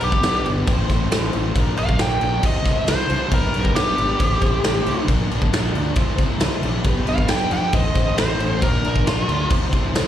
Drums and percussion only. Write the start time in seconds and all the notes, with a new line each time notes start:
0.01 crash
0.12 kick
0.23 snare, crash
0.46 crash
0.68 kick, crash
0.90 kick, snare, crash
1.12 snare, crash
1.33 crash
1.56 kick, crash
1.77 crash
1.89 kick
1.99 snare, crash
2.21 crash
2.43 kick, crash
2.65 kick, snare, crash
2.87 snare, crash
3.10 crash
3.31 kick, crash
3.54 crash
3.65 kick
3.76 snare, crash
3.98 crash
4.20 kick, crash
4.41 kick, crash
4.64 snare, crash
4.86 crash
5.08 kick, crash
5.31 crash
5.42 kick
5.53 snare, crash
5.75 crash
5.96 kick, crash
6.18 kick, crash
6.40 snare, crash
6.63 crash
6.84 kick, crash
7.07 crash
7.18 kick
7.28 snare, crash
7.51 crash
7.73 kick, crash
7.95 kick, snare, crash
8.18 snare, crash
8.40 crash
8.62 kick, crash
8.85 crash
8.96 kick
9.07 snare, crash
9.29 crash
9.50 kick, crash
9.73 kick, crash
9.95 snare, crash